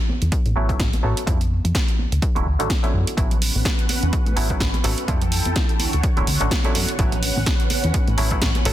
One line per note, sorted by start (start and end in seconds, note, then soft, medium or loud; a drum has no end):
0.08 tambourine medium
0.08 high conga medium
0.22 0.30 E2 medium
0.22 closed hi-hat soft
0.22 tambourine soft
0.32 0.43 A2 soft
0.32 kick loud
0.32 closed hi-hat medium
0.32 tambourine soft
0.45 0.54 A2 medium
0.45 closed hi-hat soft
0.45 high conga medium
0.56 0.75 A1 loud
0.56 0.67 F#3 loud
0.56 0.68 A3 medium
0.56 0.68 B3 medium
0.56 0.68 C#4 medium
0.56 0.68 E4 loud
0.56 tambourine medium
0.69 0.88 F#3 medium
0.69 0.88 A3 medium
0.69 0.88 B3 medium
0.69 0.89 C#4 medium
0.69 0.89 E4 medium
0.69 kick medium
0.69 closed hi-hat soft
0.69 tambourine soft
0.80 0.90 A1 loud
0.80 kick loud
0.80 snare loud
0.80 closed hi-hat medium
0.93 closed hi-hat soft
0.93 high conga loud
1.03 1.14 A1 loud
1.03 1.23 F#3 medium
1.03 1.24 A3 medium
1.03 1.24 B3 medium
1.03 1.24 C#4 medium
1.03 1.24 A4 loud
1.03 tambourine medium
1.17 closed hi-hat soft
1.17 tambourine soft
1.27 1.60 F2 loud
1.27 1.41 F3 medium
1.27 1.41 G3 medium
1.27 1.41 A3 medium
1.27 1.41 C4 medium
1.27 1.41 E4 medium
1.27 kick loud
1.27 closed hi-hat medium
1.27 tambourine soft
1.27 high conga medium
1.41 closed hi-hat soft
1.51 tambourine medium
1.65 1.73 F2 medium
1.65 closed hi-hat soft
1.65 tambourine soft
1.65 high conga medium
1.75 kick loud
1.75 snare loud
1.75 closed hi-hat medium
1.89 closed hi-hat soft
1.99 2.10 D2 soft
1.99 tambourine medium
1.99 high conga medium
2.12 2.20 D2 medium
2.12 closed hi-hat soft
2.12 tambourine soft
2.22 kick loud
2.22 closed hi-hat medium
2.35 2.44 D1 medium
2.35 2.47 D3 medium
2.35 2.47 F#3 medium
2.35 2.47 A3 medium
2.35 2.47 C#4 medium
2.35 2.47 E4 loud
2.35 closed hi-hat soft
2.35 high conga medium
2.46 2.57 D2 medium
2.46 tambourine medium
2.59 2.68 A1 medium
2.59 2.70 D3 medium
2.59 2.71 F#3 medium
2.59 2.71 A3 medium
2.59 2.71 C#4 medium
2.59 2.71 F#4 medium
2.59 closed hi-hat soft
2.59 tambourine medium
2.70 kick loud
2.70 snare loud
2.70 closed hi-hat medium
2.83 3.15 D3 medium
2.83 3.15 F#3 medium
2.83 3.15 A3 medium
2.83 3.15 C#4 medium
2.83 3.16 E4 loud
2.83 closed hi-hat soft
2.83 high conga loud
2.94 3.05 F#2 loud
2.94 tambourine medium
3.07 closed hi-hat soft
3.07 tambourine soft
3.17 3.50 A1 loud
3.17 3.38 F#3 medium
3.17 3.38 A3 medium
3.17 3.38 B3 medium
3.17 3.38 C#4 medium
3.17 5.07 C#4 medium
3.17 3.38 E4 medium
3.17 5.07 B4 medium
3.17 5.06 F#5 medium
3.17 kick loud
3.17 closed hi-hat medium
3.17 tambourine soft
3.17 high conga medium
3.31 closed hi-hat soft
3.31 low conga medium
3.42 open hi-hat loud
3.42 tambourine medium
3.55 3.63 A1 medium
3.55 tambourine medium
3.55 high conga medium
3.65 kick loud
3.65 snare loud
3.65 closed hi-hat medium
3.79 closed hi-hat soft
3.89 open hi-hat loud
3.89 tambourine medium
3.89 high conga medium
4.03 4.11 E2 medium
4.03 closed hi-hat soft
4.03 tambourine soft
4.13 4.24 A2 soft
4.13 kick loud
4.13 closed hi-hat medium
4.13 tambourine soft
4.26 4.35 A2 medium
4.26 closed hi-hat soft
4.26 high conga medium
4.36 4.56 A1 loud
4.36 4.48 F#3 loud
4.36 4.48 A3 medium
4.36 4.48 B3 medium
4.36 4.48 C#4 medium
4.36 4.49 E4 loud
4.36 open hi-hat loud
4.50 4.69 F#3 medium
4.50 4.69 A3 medium
4.50 4.69 B3 medium
4.50 4.70 C#4 medium
4.50 4.70 E4 medium
4.50 kick medium
4.50 closed hi-hat soft
4.50 tambourine soft
4.60 4.71 A1 loud
4.60 kick loud
4.60 snare loud
4.60 closed hi-hat medium
4.74 closed hi-hat soft
4.74 high conga medium
4.84 4.95 A1 loud
4.84 5.04 F#3 medium
4.84 5.05 A3 medium
4.84 5.05 B3 medium
4.84 5.05 C#4 medium
4.84 5.05 A4 loud
4.84 open hi-hat loud
4.84 tambourine medium
4.98 closed hi-hat medium
4.98 tambourine medium
5.08 5.41 F2 medium
5.08 5.22 F3 medium
5.08 5.22 G3 medium
5.08 5.22 A3 medium
5.08 5.22 C4 medium
5.08 5.22 E4 medium
5.08 5.79 E4 medium
5.08 5.79 A4 medium
5.08 5.79 G5 medium
5.08 kick loud
5.08 closed hi-hat medium
5.08 tambourine soft
5.08 high conga medium
5.22 closed hi-hat medium
5.22 low conga medium
5.32 open hi-hat medium
5.32 tambourine medium
5.45 5.54 F2 medium
5.45 closed hi-hat soft
5.45 tambourine soft
5.45 high conga medium
5.56 kick loud
5.56 snare loud
5.56 closed hi-hat medium
5.69 closed hi-hat soft
5.79 5.91 D2 soft
5.79 6.98 D3 medium
5.79 6.98 C#5 medium
5.79 8.73 F#5 medium
5.79 open hi-hat medium
5.79 tambourine medium
5.79 high conga medium
5.93 6.02 D2 medium
5.93 closed hi-hat soft
5.93 tambourine medium
6.03 kick loud
6.03 closed hi-hat medium
6.17 6.25 D1 loud
6.17 6.28 D3 medium
6.17 6.28 F#3 medium
6.17 6.28 A3 medium
6.17 6.28 C#4 medium
6.17 6.28 E4 loud
6.17 closed hi-hat soft
6.17 high conga medium
6.27 6.38 D2 medium
6.27 open hi-hat loud
6.27 tambourine medium
6.40 6.49 A1 medium
6.40 6.51 D3 medium
6.40 6.52 F#3 medium
6.40 6.52 A3 medium
6.40 6.52 C#4 medium
6.40 6.52 F#4 medium
6.40 closed hi-hat soft
6.40 tambourine medium
6.51 kick loud
6.51 snare loud
6.51 closed hi-hat medium
6.64 6.96 D3 medium
6.64 6.96 F#3 medium
6.64 6.97 A3 medium
6.64 6.97 C#4 medium
6.64 6.97 E4 loud
6.64 closed hi-hat soft
6.64 high conga medium
6.75 6.86 F#2 loud
6.75 open hi-hat loud
6.75 tambourine medium
6.88 closed hi-hat medium
6.88 tambourine soft
6.99 7.32 A1 medium
6.99 7.19 F#3 medium
6.99 7.19 A3 medium
6.99 7.19 B3 medium
6.99 8.73 C#4 medium
6.99 7.19 C#4 medium
6.99 7.20 E4 medium
6.99 8.73 B4 medium
6.99 kick loud
6.99 closed hi-hat medium
6.99 tambourine soft
6.99 high conga medium
7.12 closed hi-hat medium
7.12 low conga medium
7.23 open hi-hat medium
7.23 tambourine medium
7.36 7.45 A1 medium
7.36 tambourine soft
7.36 high conga medium
7.45 kick loud
7.45 snare loud
7.45 closed hi-hat medium
7.45 tambourine soft
7.60 closed hi-hat soft
7.70 open hi-hat loud
7.70 tambourine medium
7.70 high conga medium
7.84 7.92 E2 medium
7.84 closed hi-hat soft
7.84 tambourine soft
7.94 8.05 A2 soft
7.94 kick loud
7.94 closed hi-hat medium
8.08 8.16 A2 medium
8.08 closed hi-hat soft
8.08 high conga medium
8.18 8.38 A1 loud
8.18 8.29 F#3 loud
8.18 8.29 A3 medium
8.18 8.29 B3 medium
8.18 8.30 C#4 medium
8.18 8.30 E4 loud
8.18 open hi-hat loud
8.18 tambourine loud
8.31 8.50 F#3 medium
8.31 8.50 A3 medium
8.31 8.51 B3 medium
8.31 8.51 C#4 medium
8.31 8.51 E4 medium
8.31 kick medium
8.31 closed hi-hat soft
8.31 tambourine medium
8.42 8.52 A1 loud
8.42 kick loud
8.42 snare loud
8.42 closed hi-hat medium
8.55 closed hi-hat soft
8.55 high conga medium
8.65 8.73 A1 loud
8.65 8.73 F#3 medium
8.65 8.73 A3 medium
8.65 8.73 B3 medium
8.65 8.73 C#4 medium
8.65 8.73 A4 loud
8.65 open hi-hat loud
8.65 tambourine medium